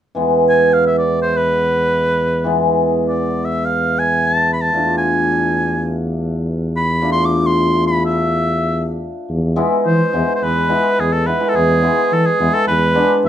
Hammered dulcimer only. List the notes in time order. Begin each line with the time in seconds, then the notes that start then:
0.15 E3 G#3 B3
2.44 E3 G#3 B3
4.73 A3 D4 F4
7.01 A3 D4 F4
9.56 G#3 B3 E4
10.13 G#3 B3 E4
10.69 G#3 B3 E4
11.27 B3 E4
11.40 G#3 B3 E4
11.82 G#3 B3 E4
12.40 G#3 B3 E4
12.95 G#3 B3 D4